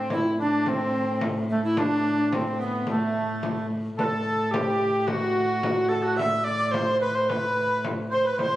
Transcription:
0.00 3.96 A2 medium
0.00 0.12 C4 medium
0.10 0.31 E4 medium
0.10 0.38 E4 medium
0.10 frame drum medium
0.32 0.39 E4 medium
0.39 0.67 D4 medium
0.39 0.70 D4 medium
0.39 frame drum soft
0.66 1.20 C4 medium
0.66 1.25 C4 medium
0.66 frame drum medium
1.21 frame drum medium
1.49 1.64 A3 medium
1.49 1.62 A3 medium
1.49 frame drum soft
1.64 1.78 E4 medium
1.64 1.80 E4 medium
1.77 2.17 D4 medium
1.77 2.36 D4 loud
1.77 frame drum medium
2.19 2.33 D4 medium
2.31 2.60 C4 medium
2.31 frame drum medium
2.59 2.88 B3 medium
2.59 2.86 B3 medium
2.59 frame drum soft
2.87 3.67 A3 medium
2.87 frame drum medium
3.16 frame drum soft
3.43 frame drum medium
3.97 8.38 A2 medium
3.97 4.55 A4 medium
3.97 4.05 B4 medium
3.97 4.47 A5 medium
3.97 frame drum medium
4.04 4.53 A4 medium
4.47 4.53 A5 soft
4.51 5.08 G4 medium
4.51 5.10 G4 medium
4.51 5.07 G5 medium
4.51 frame drum medium
4.81 frame drum soft
5.07 5.90 F#4 loud
5.07 5.94 F#4 medium
5.07 5.93 F#5 medium
5.07 frame drum medium
5.63 frame drum medium
5.89 6.04 A4 medium
5.89 6.06 A4 medium
5.89 6.19 A5 medium
5.89 frame drum soft
6.03 6.18 F#4 medium
6.03 6.18 F#5 medium
6.17 6.46 E5 loud
6.17 6.47 E5 medium
6.17 6.45 E6 medium
6.17 frame drum medium
6.44 6.73 D5 loud
6.44 6.74 D5 medium
6.44 6.51 E6 medium
6.50 6.72 D6 medium
6.71 7.00 C5 medium
6.71 7.02 C5 medium
6.71 6.78 D6 medium
6.71 frame drum medium
6.77 7.12 C6 medium
7.00 7.17 B4 medium
7.00 7.15 B4 medium
7.00 frame drum soft
7.14 7.29 C5 medium
7.14 7.30 C5 medium
7.14 7.32 C6 medium
7.28 7.82 B4 medium
7.28 7.86 B4 medium
7.28 7.87 B5 medium
7.28 frame drum medium
7.85 frame drum medium
8.10 8.25 C5 medium
8.10 8.28 C5 medium
8.10 8.24 C6 medium
8.10 frame drum soft
8.24 8.39 B4 medium
8.24 8.40 B4 medium
8.24 8.31 B5 medium
8.37 8.56 A2 medium
8.37 8.56 C5 medium
8.37 8.56 C5 loud
8.37 8.56 C6 medium
8.37 frame drum medium

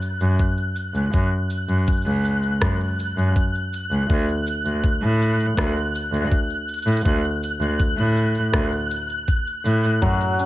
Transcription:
0.00 10.46 F#6 medium
0.00 cabasa medium
0.21 0.32 F#2 medium
0.21 cabasa soft
0.39 kick medium
0.39 cabasa soft
0.57 cabasa soft
0.76 cabasa medium
0.94 1.06 C#2 medium
0.94 cabasa soft
1.13 1.25 F#2 medium
1.13 kick medium
1.13 cabasa soft
1.50 cabasa medium
1.68 1.80 F#2 medium
1.68 cabasa soft
1.87 kick loud
1.87 cabasa soft
1.92 cabasa soft
1.97 cabasa soft
2.02 2.50 C#2 loud
2.02 cabasa soft
2.06 cabasa soft
2.11 cabasa soft
2.16 cabasa soft
2.20 cabasa soft
2.25 cabasa medium
2.43 cabasa soft
2.62 2.73 F#2 medium
2.62 kick loud
2.62 cross-stick medium
2.62 cabasa soft
2.80 cabasa soft
2.99 cabasa medium
3.17 3.28 F#2 medium
3.17 cabasa soft
3.36 kick loud
3.36 cabasa soft
3.55 cabasa soft
3.73 cabasa medium
3.91 4.03 C#2 medium
3.91 cabasa soft
4.10 4.21 D2 medium
4.10 kick medium
4.10 cabasa soft
4.28 cabasa soft
4.47 cabasa medium
4.65 4.77 D2 medium
4.65 cabasa soft
4.84 kick loud
4.84 cabasa soft
5.03 5.46 A2 medium
5.03 cabasa soft
5.22 cabasa medium
5.40 cabasa soft
5.57 5.69 D2 medium
5.57 kick loud
5.57 cross-stick medium
5.57 cabasa soft
5.77 cabasa soft
5.95 cabasa medium
6.12 6.24 D2 medium
6.12 cabasa soft
6.32 kick medium
6.32 cabasa soft
6.50 cabasa soft
6.68 cabasa soft
6.74 cabasa soft
6.78 cabasa soft
6.82 6.98 A2 medium
6.82 cabasa medium
6.87 cabasa medium
6.92 cabasa medium
6.96 cabasa medium
7.01 cabasa medium
7.05 7.17 D2 medium
7.05 kick loud
7.05 cabasa soft
7.24 cabasa soft
7.43 cabasa medium
7.60 7.72 D2 medium
7.60 cabasa soft
7.80 kick medium
7.80 cabasa soft
7.97 8.42 A2 medium
7.97 cabasa soft
8.16 cabasa medium
8.35 cabasa soft
8.53 8.65 D2 medium
8.53 kick loud
8.53 cross-stick medium
8.53 cabasa soft
8.72 cabasa soft
8.91 cabasa medium
9.09 cabasa soft
9.28 kick loud
9.28 cabasa soft
9.47 cabasa soft
9.65 9.88 A2 medium
9.65 cabasa medium
9.84 cabasa soft
10.02 10.13 F#2 medium
10.02 10.46 F#3 medium
10.02 10.46 F#4 medium
10.02 kick loud
10.02 cabasa soft
10.21 open hi-hat soft
10.21 cabasa soft
10.39 10.46 C#4 medium
10.39 cabasa medium

